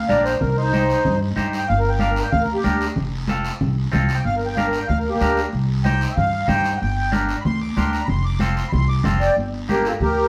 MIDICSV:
0, 0, Header, 1, 5, 480
1, 0, Start_track
1, 0, Key_signature, -2, "minor"
1, 0, Tempo, 319829
1, 618, Time_signature, 4, 2, 24, 8
1, 15428, End_track
2, 0, Start_track
2, 0, Title_t, "Accordion"
2, 0, Program_c, 0, 21
2, 133, Note_on_c, 0, 74, 86
2, 368, Note_on_c, 0, 72, 78
2, 369, Note_off_c, 0, 74, 0
2, 606, Note_off_c, 0, 72, 0
2, 606, Note_on_c, 0, 70, 75
2, 844, Note_off_c, 0, 70, 0
2, 855, Note_on_c, 0, 72, 90
2, 856, Note_on_c, 0, 63, 80
2, 1756, Note_off_c, 0, 63, 0
2, 1786, Note_off_c, 0, 72, 0
2, 2378, Note_on_c, 0, 79, 87
2, 2529, Note_on_c, 0, 77, 89
2, 2532, Note_off_c, 0, 79, 0
2, 2687, Note_off_c, 0, 77, 0
2, 2688, Note_on_c, 0, 70, 78
2, 2835, Note_on_c, 0, 79, 75
2, 2847, Note_off_c, 0, 70, 0
2, 2989, Note_on_c, 0, 77, 86
2, 3000, Note_off_c, 0, 79, 0
2, 3157, Note_off_c, 0, 77, 0
2, 3160, Note_on_c, 0, 70, 69
2, 3323, Note_off_c, 0, 70, 0
2, 3327, Note_on_c, 0, 79, 80
2, 3476, Note_on_c, 0, 77, 90
2, 3486, Note_off_c, 0, 79, 0
2, 3622, Note_on_c, 0, 70, 85
2, 3640, Note_off_c, 0, 77, 0
2, 3793, Note_off_c, 0, 70, 0
2, 3813, Note_on_c, 0, 67, 86
2, 4279, Note_off_c, 0, 67, 0
2, 6215, Note_on_c, 0, 79, 85
2, 6370, Note_off_c, 0, 79, 0
2, 6383, Note_on_c, 0, 77, 95
2, 6534, Note_off_c, 0, 77, 0
2, 6552, Note_on_c, 0, 70, 79
2, 6690, Note_on_c, 0, 79, 82
2, 6699, Note_off_c, 0, 70, 0
2, 6843, Note_on_c, 0, 77, 88
2, 6848, Note_off_c, 0, 79, 0
2, 7004, Note_off_c, 0, 77, 0
2, 7004, Note_on_c, 0, 70, 75
2, 7149, Note_on_c, 0, 79, 79
2, 7165, Note_off_c, 0, 70, 0
2, 7314, Note_on_c, 0, 77, 93
2, 7317, Note_off_c, 0, 79, 0
2, 7480, Note_off_c, 0, 77, 0
2, 7481, Note_on_c, 0, 70, 77
2, 7641, Note_on_c, 0, 58, 83
2, 7643, Note_off_c, 0, 70, 0
2, 7649, Note_on_c, 0, 67, 91
2, 8094, Note_off_c, 0, 58, 0
2, 8118, Note_off_c, 0, 67, 0
2, 8765, Note_on_c, 0, 79, 95
2, 9178, Note_on_c, 0, 76, 58
2, 9217, Note_off_c, 0, 76, 0
2, 9236, Note_off_c, 0, 79, 0
2, 9247, Note_on_c, 0, 77, 89
2, 9718, Note_off_c, 0, 77, 0
2, 9734, Note_on_c, 0, 79, 100
2, 10157, Note_on_c, 0, 78, 62
2, 10192, Note_off_c, 0, 78, 0
2, 10200, Note_off_c, 0, 79, 0
2, 10223, Note_on_c, 0, 79, 93
2, 10686, Note_off_c, 0, 79, 0
2, 11117, Note_on_c, 0, 83, 77
2, 11152, Note_off_c, 0, 83, 0
2, 11185, Note_on_c, 0, 84, 109
2, 11415, Note_off_c, 0, 84, 0
2, 11430, Note_on_c, 0, 86, 84
2, 11657, Note_off_c, 0, 86, 0
2, 11660, Note_on_c, 0, 84, 93
2, 11892, Note_off_c, 0, 84, 0
2, 11906, Note_on_c, 0, 82, 84
2, 12078, Note_on_c, 0, 83, 73
2, 12113, Note_off_c, 0, 83, 0
2, 12136, Note_off_c, 0, 82, 0
2, 12145, Note_on_c, 0, 84, 100
2, 12375, Note_off_c, 0, 84, 0
2, 12378, Note_on_c, 0, 86, 90
2, 12612, Note_off_c, 0, 86, 0
2, 12616, Note_on_c, 0, 84, 86
2, 12836, Note_off_c, 0, 84, 0
2, 12858, Note_on_c, 0, 84, 94
2, 13043, Note_on_c, 0, 83, 73
2, 13078, Note_off_c, 0, 83, 0
2, 13092, Note_off_c, 0, 84, 0
2, 13115, Note_on_c, 0, 84, 104
2, 13339, Note_on_c, 0, 86, 87
2, 13341, Note_off_c, 0, 84, 0
2, 13573, Note_off_c, 0, 86, 0
2, 13585, Note_on_c, 0, 84, 93
2, 13810, Note_on_c, 0, 74, 81
2, 13816, Note_off_c, 0, 84, 0
2, 13821, Note_on_c, 0, 79, 86
2, 14039, Note_off_c, 0, 74, 0
2, 14054, Note_off_c, 0, 79, 0
2, 14569, Note_on_c, 0, 67, 69
2, 14580, Note_on_c, 0, 70, 80
2, 14780, Note_off_c, 0, 67, 0
2, 14807, Note_on_c, 0, 65, 60
2, 14808, Note_off_c, 0, 70, 0
2, 14818, Note_on_c, 0, 69, 81
2, 14910, Note_off_c, 0, 65, 0
2, 14918, Note_off_c, 0, 69, 0
2, 15031, Note_on_c, 0, 67, 70
2, 15037, Note_on_c, 0, 70, 94
2, 15428, Note_off_c, 0, 67, 0
2, 15428, Note_off_c, 0, 70, 0
2, 15428, End_track
3, 0, Start_track
3, 0, Title_t, "Clean electric guitar"
3, 0, Program_c, 1, 27
3, 137, Note_on_c, 1, 62, 74
3, 148, Note_on_c, 1, 70, 77
3, 151, Note_on_c, 1, 67, 58
3, 475, Note_off_c, 1, 62, 0
3, 476, Note_off_c, 1, 67, 0
3, 479, Note_off_c, 1, 70, 0
3, 1095, Note_on_c, 1, 63, 74
3, 1102, Note_on_c, 1, 67, 53
3, 1107, Note_on_c, 1, 72, 76
3, 1432, Note_off_c, 1, 67, 0
3, 1433, Note_off_c, 1, 63, 0
3, 1438, Note_off_c, 1, 72, 0
3, 2042, Note_on_c, 1, 63, 78
3, 2051, Note_on_c, 1, 67, 66
3, 2057, Note_on_c, 1, 72, 88
3, 2386, Note_off_c, 1, 63, 0
3, 2386, Note_off_c, 1, 67, 0
3, 2393, Note_off_c, 1, 72, 0
3, 2997, Note_on_c, 1, 62, 67
3, 2999, Note_on_c, 1, 67, 61
3, 3018, Note_on_c, 1, 70, 72
3, 3342, Note_off_c, 1, 62, 0
3, 3345, Note_off_c, 1, 67, 0
3, 3348, Note_off_c, 1, 70, 0
3, 3959, Note_on_c, 1, 62, 68
3, 3968, Note_on_c, 1, 70, 73
3, 3970, Note_on_c, 1, 67, 54
3, 4304, Note_off_c, 1, 62, 0
3, 4305, Note_off_c, 1, 67, 0
3, 4307, Note_off_c, 1, 70, 0
3, 4935, Note_on_c, 1, 60, 78
3, 4944, Note_on_c, 1, 69, 94
3, 4946, Note_on_c, 1, 65, 65
3, 5271, Note_off_c, 1, 60, 0
3, 5274, Note_off_c, 1, 65, 0
3, 5275, Note_off_c, 1, 69, 0
3, 5878, Note_on_c, 1, 60, 81
3, 5883, Note_on_c, 1, 65, 73
3, 5894, Note_on_c, 1, 69, 78
3, 6222, Note_off_c, 1, 60, 0
3, 6226, Note_off_c, 1, 65, 0
3, 6228, Note_off_c, 1, 69, 0
3, 6862, Note_on_c, 1, 62, 68
3, 6868, Note_on_c, 1, 67, 63
3, 6875, Note_on_c, 1, 70, 76
3, 7195, Note_off_c, 1, 62, 0
3, 7195, Note_off_c, 1, 67, 0
3, 7201, Note_off_c, 1, 70, 0
3, 7815, Note_on_c, 1, 62, 75
3, 7828, Note_on_c, 1, 67, 56
3, 7831, Note_on_c, 1, 70, 79
3, 8153, Note_off_c, 1, 62, 0
3, 8155, Note_off_c, 1, 67, 0
3, 8160, Note_off_c, 1, 70, 0
3, 8771, Note_on_c, 1, 63, 71
3, 8786, Note_on_c, 1, 72, 75
3, 8789, Note_on_c, 1, 67, 52
3, 9112, Note_off_c, 1, 63, 0
3, 9115, Note_off_c, 1, 67, 0
3, 9118, Note_off_c, 1, 72, 0
3, 9719, Note_on_c, 1, 63, 70
3, 9732, Note_on_c, 1, 67, 61
3, 9738, Note_on_c, 1, 72, 76
3, 10066, Note_off_c, 1, 63, 0
3, 10068, Note_off_c, 1, 67, 0
3, 10074, Note_off_c, 1, 72, 0
3, 10682, Note_on_c, 1, 62, 70
3, 10694, Note_on_c, 1, 67, 65
3, 10696, Note_on_c, 1, 70, 78
3, 11028, Note_off_c, 1, 62, 0
3, 11029, Note_off_c, 1, 67, 0
3, 11033, Note_off_c, 1, 70, 0
3, 11658, Note_on_c, 1, 62, 71
3, 11667, Note_on_c, 1, 67, 66
3, 11674, Note_on_c, 1, 70, 68
3, 11994, Note_off_c, 1, 62, 0
3, 12000, Note_off_c, 1, 67, 0
3, 12000, Note_off_c, 1, 70, 0
3, 12604, Note_on_c, 1, 60, 75
3, 12614, Note_on_c, 1, 65, 66
3, 12620, Note_on_c, 1, 69, 69
3, 12948, Note_off_c, 1, 60, 0
3, 12954, Note_off_c, 1, 69, 0
3, 12955, Note_off_c, 1, 65, 0
3, 13563, Note_on_c, 1, 60, 73
3, 13576, Note_on_c, 1, 65, 58
3, 13585, Note_on_c, 1, 69, 72
3, 13911, Note_off_c, 1, 60, 0
3, 13913, Note_off_c, 1, 65, 0
3, 13913, Note_off_c, 1, 69, 0
3, 14536, Note_on_c, 1, 58, 66
3, 14544, Note_on_c, 1, 62, 48
3, 14550, Note_on_c, 1, 67, 78
3, 14877, Note_off_c, 1, 58, 0
3, 14877, Note_off_c, 1, 62, 0
3, 14882, Note_off_c, 1, 67, 0
3, 15428, End_track
4, 0, Start_track
4, 0, Title_t, "Upright bass"
4, 0, Program_c, 2, 32
4, 134, Note_on_c, 2, 34, 82
4, 519, Note_off_c, 2, 34, 0
4, 624, Note_on_c, 2, 36, 95
4, 1389, Note_off_c, 2, 36, 0
4, 1593, Note_on_c, 2, 43, 104
4, 1970, Note_off_c, 2, 43, 0
4, 2069, Note_on_c, 2, 43, 86
4, 2448, Note_off_c, 2, 43, 0
4, 2549, Note_on_c, 2, 31, 99
4, 3311, Note_off_c, 2, 31, 0
4, 3505, Note_on_c, 2, 38, 96
4, 3885, Note_off_c, 2, 38, 0
4, 3984, Note_on_c, 2, 38, 86
4, 4364, Note_off_c, 2, 38, 0
4, 4458, Note_on_c, 2, 29, 89
4, 5224, Note_off_c, 2, 29, 0
4, 5416, Note_on_c, 2, 36, 96
4, 5799, Note_off_c, 2, 36, 0
4, 5905, Note_on_c, 2, 36, 84
4, 6285, Note_off_c, 2, 36, 0
4, 6380, Note_on_c, 2, 31, 96
4, 7146, Note_off_c, 2, 31, 0
4, 7339, Note_on_c, 2, 38, 98
4, 7722, Note_off_c, 2, 38, 0
4, 7818, Note_on_c, 2, 38, 90
4, 8201, Note_off_c, 2, 38, 0
4, 8299, Note_on_c, 2, 36, 96
4, 9066, Note_off_c, 2, 36, 0
4, 9262, Note_on_c, 2, 43, 102
4, 9644, Note_off_c, 2, 43, 0
4, 9745, Note_on_c, 2, 43, 95
4, 10126, Note_off_c, 2, 43, 0
4, 10234, Note_on_c, 2, 31, 93
4, 10996, Note_off_c, 2, 31, 0
4, 11187, Note_on_c, 2, 38, 96
4, 11568, Note_off_c, 2, 38, 0
4, 11664, Note_on_c, 2, 38, 91
4, 12046, Note_off_c, 2, 38, 0
4, 12148, Note_on_c, 2, 29, 96
4, 12913, Note_off_c, 2, 29, 0
4, 13103, Note_on_c, 2, 36, 104
4, 13487, Note_off_c, 2, 36, 0
4, 13585, Note_on_c, 2, 29, 85
4, 13968, Note_off_c, 2, 29, 0
4, 14057, Note_on_c, 2, 31, 85
4, 14827, Note_off_c, 2, 31, 0
4, 15012, Note_on_c, 2, 38, 97
4, 15400, Note_off_c, 2, 38, 0
4, 15428, End_track
5, 0, Start_track
5, 0, Title_t, "Drums"
5, 144, Note_on_c, 9, 63, 77
5, 153, Note_on_c, 9, 73, 67
5, 294, Note_off_c, 9, 63, 0
5, 303, Note_off_c, 9, 73, 0
5, 387, Note_on_c, 9, 73, 68
5, 537, Note_off_c, 9, 73, 0
5, 615, Note_on_c, 9, 63, 34
5, 615, Note_on_c, 9, 64, 75
5, 625, Note_on_c, 9, 74, 70
5, 765, Note_off_c, 9, 63, 0
5, 765, Note_off_c, 9, 64, 0
5, 775, Note_off_c, 9, 74, 0
5, 1101, Note_on_c, 9, 63, 79
5, 1110, Note_on_c, 9, 73, 67
5, 1251, Note_off_c, 9, 63, 0
5, 1260, Note_off_c, 9, 73, 0
5, 1349, Note_on_c, 9, 73, 70
5, 1499, Note_off_c, 9, 73, 0
5, 1576, Note_on_c, 9, 63, 33
5, 1576, Note_on_c, 9, 64, 85
5, 1727, Note_off_c, 9, 63, 0
5, 1727, Note_off_c, 9, 64, 0
5, 2048, Note_on_c, 9, 63, 73
5, 2063, Note_on_c, 9, 73, 69
5, 2198, Note_off_c, 9, 63, 0
5, 2214, Note_off_c, 9, 73, 0
5, 2301, Note_on_c, 9, 73, 73
5, 2451, Note_off_c, 9, 73, 0
5, 2530, Note_on_c, 9, 74, 68
5, 2531, Note_on_c, 9, 63, 35
5, 2680, Note_off_c, 9, 74, 0
5, 2681, Note_off_c, 9, 63, 0
5, 2990, Note_on_c, 9, 63, 76
5, 3011, Note_on_c, 9, 73, 65
5, 3140, Note_off_c, 9, 63, 0
5, 3161, Note_off_c, 9, 73, 0
5, 3247, Note_on_c, 9, 73, 71
5, 3398, Note_off_c, 9, 73, 0
5, 3490, Note_on_c, 9, 63, 34
5, 3490, Note_on_c, 9, 64, 84
5, 3490, Note_on_c, 9, 74, 72
5, 3640, Note_off_c, 9, 63, 0
5, 3640, Note_off_c, 9, 64, 0
5, 3640, Note_off_c, 9, 74, 0
5, 3966, Note_on_c, 9, 63, 80
5, 3972, Note_on_c, 9, 73, 67
5, 4116, Note_off_c, 9, 63, 0
5, 4122, Note_off_c, 9, 73, 0
5, 4214, Note_on_c, 9, 73, 68
5, 4364, Note_off_c, 9, 73, 0
5, 4441, Note_on_c, 9, 74, 74
5, 4445, Note_on_c, 9, 63, 35
5, 4445, Note_on_c, 9, 64, 72
5, 4591, Note_off_c, 9, 74, 0
5, 4595, Note_off_c, 9, 63, 0
5, 4595, Note_off_c, 9, 64, 0
5, 4917, Note_on_c, 9, 63, 81
5, 4924, Note_on_c, 9, 73, 68
5, 5067, Note_off_c, 9, 63, 0
5, 5074, Note_off_c, 9, 73, 0
5, 5172, Note_on_c, 9, 73, 73
5, 5322, Note_off_c, 9, 73, 0
5, 5415, Note_on_c, 9, 74, 69
5, 5418, Note_on_c, 9, 63, 34
5, 5418, Note_on_c, 9, 64, 81
5, 5565, Note_off_c, 9, 74, 0
5, 5568, Note_off_c, 9, 63, 0
5, 5568, Note_off_c, 9, 64, 0
5, 5897, Note_on_c, 9, 73, 70
5, 5901, Note_on_c, 9, 63, 84
5, 5901, Note_on_c, 9, 64, 71
5, 6047, Note_off_c, 9, 73, 0
5, 6051, Note_off_c, 9, 63, 0
5, 6051, Note_off_c, 9, 64, 0
5, 6136, Note_on_c, 9, 73, 70
5, 6286, Note_off_c, 9, 73, 0
5, 6381, Note_on_c, 9, 63, 35
5, 6531, Note_off_c, 9, 63, 0
5, 6860, Note_on_c, 9, 63, 83
5, 6863, Note_on_c, 9, 73, 67
5, 7010, Note_off_c, 9, 63, 0
5, 7013, Note_off_c, 9, 73, 0
5, 7097, Note_on_c, 9, 73, 72
5, 7247, Note_off_c, 9, 73, 0
5, 7339, Note_on_c, 9, 74, 70
5, 7349, Note_on_c, 9, 63, 33
5, 7349, Note_on_c, 9, 64, 84
5, 7489, Note_off_c, 9, 74, 0
5, 7499, Note_off_c, 9, 63, 0
5, 7499, Note_off_c, 9, 64, 0
5, 7813, Note_on_c, 9, 73, 70
5, 7824, Note_on_c, 9, 63, 77
5, 7963, Note_off_c, 9, 73, 0
5, 7974, Note_off_c, 9, 63, 0
5, 8060, Note_on_c, 9, 73, 72
5, 8210, Note_off_c, 9, 73, 0
5, 8293, Note_on_c, 9, 74, 71
5, 8305, Note_on_c, 9, 63, 37
5, 8443, Note_off_c, 9, 74, 0
5, 8455, Note_off_c, 9, 63, 0
5, 8771, Note_on_c, 9, 73, 67
5, 8781, Note_on_c, 9, 63, 80
5, 8921, Note_off_c, 9, 73, 0
5, 8931, Note_off_c, 9, 63, 0
5, 9023, Note_on_c, 9, 73, 72
5, 9173, Note_off_c, 9, 73, 0
5, 9254, Note_on_c, 9, 74, 71
5, 9268, Note_on_c, 9, 63, 38
5, 9268, Note_on_c, 9, 64, 83
5, 9404, Note_off_c, 9, 74, 0
5, 9418, Note_off_c, 9, 63, 0
5, 9418, Note_off_c, 9, 64, 0
5, 9724, Note_on_c, 9, 63, 86
5, 9724, Note_on_c, 9, 64, 67
5, 9734, Note_on_c, 9, 73, 66
5, 9874, Note_off_c, 9, 63, 0
5, 9874, Note_off_c, 9, 64, 0
5, 9884, Note_off_c, 9, 73, 0
5, 9968, Note_on_c, 9, 73, 73
5, 10118, Note_off_c, 9, 73, 0
5, 10215, Note_on_c, 9, 74, 74
5, 10216, Note_on_c, 9, 63, 36
5, 10365, Note_off_c, 9, 74, 0
5, 10366, Note_off_c, 9, 63, 0
5, 10693, Note_on_c, 9, 63, 83
5, 10701, Note_on_c, 9, 73, 73
5, 10843, Note_off_c, 9, 63, 0
5, 10851, Note_off_c, 9, 73, 0
5, 10937, Note_on_c, 9, 73, 74
5, 11087, Note_off_c, 9, 73, 0
5, 11180, Note_on_c, 9, 74, 72
5, 11183, Note_on_c, 9, 63, 37
5, 11183, Note_on_c, 9, 64, 83
5, 11330, Note_off_c, 9, 74, 0
5, 11333, Note_off_c, 9, 63, 0
5, 11333, Note_off_c, 9, 64, 0
5, 11662, Note_on_c, 9, 63, 84
5, 11663, Note_on_c, 9, 73, 73
5, 11812, Note_off_c, 9, 63, 0
5, 11813, Note_off_c, 9, 73, 0
5, 11901, Note_on_c, 9, 73, 70
5, 12051, Note_off_c, 9, 73, 0
5, 12129, Note_on_c, 9, 63, 35
5, 12129, Note_on_c, 9, 64, 73
5, 12147, Note_on_c, 9, 74, 77
5, 12279, Note_off_c, 9, 63, 0
5, 12279, Note_off_c, 9, 64, 0
5, 12298, Note_off_c, 9, 74, 0
5, 12600, Note_on_c, 9, 63, 80
5, 12620, Note_on_c, 9, 73, 75
5, 12750, Note_off_c, 9, 63, 0
5, 12770, Note_off_c, 9, 73, 0
5, 12862, Note_on_c, 9, 73, 74
5, 13012, Note_off_c, 9, 73, 0
5, 13092, Note_on_c, 9, 63, 36
5, 13092, Note_on_c, 9, 64, 90
5, 13112, Note_on_c, 9, 74, 74
5, 13242, Note_off_c, 9, 63, 0
5, 13242, Note_off_c, 9, 64, 0
5, 13262, Note_off_c, 9, 74, 0
5, 13566, Note_on_c, 9, 63, 86
5, 13566, Note_on_c, 9, 64, 71
5, 13589, Note_on_c, 9, 73, 72
5, 13717, Note_off_c, 9, 63, 0
5, 13717, Note_off_c, 9, 64, 0
5, 13739, Note_off_c, 9, 73, 0
5, 13828, Note_on_c, 9, 73, 69
5, 13978, Note_off_c, 9, 73, 0
5, 14062, Note_on_c, 9, 63, 34
5, 14072, Note_on_c, 9, 74, 67
5, 14212, Note_off_c, 9, 63, 0
5, 14222, Note_off_c, 9, 74, 0
5, 14545, Note_on_c, 9, 73, 67
5, 14547, Note_on_c, 9, 63, 79
5, 14695, Note_off_c, 9, 73, 0
5, 14698, Note_off_c, 9, 63, 0
5, 14785, Note_on_c, 9, 73, 70
5, 14935, Note_off_c, 9, 73, 0
5, 15020, Note_on_c, 9, 74, 72
5, 15032, Note_on_c, 9, 63, 36
5, 15032, Note_on_c, 9, 64, 81
5, 15170, Note_off_c, 9, 74, 0
5, 15182, Note_off_c, 9, 63, 0
5, 15182, Note_off_c, 9, 64, 0
5, 15428, End_track
0, 0, End_of_file